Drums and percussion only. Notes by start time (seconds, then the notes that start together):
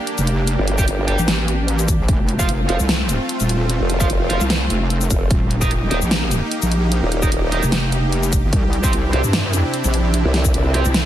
0.07 closed hi-hat
0.18 closed hi-hat, shaker
0.27 closed hi-hat
0.47 closed hi-hat
0.68 closed hi-hat
0.78 kick, shaker
0.88 closed hi-hat
1.08 closed hi-hat
1.19 shaker
1.28 snare, closed hi-hat
1.48 closed hi-hat
1.68 closed hi-hat
1.79 closed hi-hat, shaker
1.88 kick, closed hi-hat, shaker
2.08 kick, closed hi-hat
2.29 closed hi-hat
2.39 kick, shaker
2.49 closed hi-hat
2.69 closed hi-hat
2.80 shaker
2.89 snare, closed hi-hat
3.09 closed hi-hat, shaker
3.29 closed hi-hat
3.40 closed hi-hat, shaker
3.49 closed hi-hat
3.70 closed hi-hat
3.90 closed hi-hat
4.00 kick, closed hi-hat, shaker
4.10 closed hi-hat
4.30 closed hi-hat
4.41 shaker
4.50 snare, closed hi-hat
4.70 closed hi-hat
4.90 closed hi-hat
5.01 closed hi-hat, shaker
5.10 kick, closed hi-hat, shaker
5.31 kick, closed hi-hat
5.51 closed hi-hat
5.62 kick, shaker
5.71 closed hi-hat
5.91 closed hi-hat
6.02 shaker
6.11 snare, closed hi-hat
6.31 closed hi-hat, shaker
6.51 closed hi-hat
6.62 closed hi-hat, shaker
6.72 closed hi-hat
6.92 closed hi-hat
7.12 closed hi-hat
7.23 kick, shaker
7.32 closed hi-hat
7.52 closed hi-hat
7.63 shaker
7.72 snare, closed hi-hat
7.92 closed hi-hat
8.12 closed hi-hat
8.23 closed hi-hat, shaker
8.33 kick, closed hi-hat, shaker
8.53 kick, closed hi-hat
8.73 closed hi-hat
8.84 kick, shaker
8.93 closed hi-hat
9.13 closed hi-hat
9.24 shaker
9.33 snare, closed hi-hat
9.53 closed hi-hat, shaker
9.74 closed hi-hat
9.84 closed hi-hat, shaker
9.94 closed hi-hat
10.14 closed hi-hat
10.34 snare, closed hi-hat
10.45 kick, shaker
10.54 closed hi-hat
10.74 closed hi-hat
10.85 shaker
10.94 snare, closed hi-hat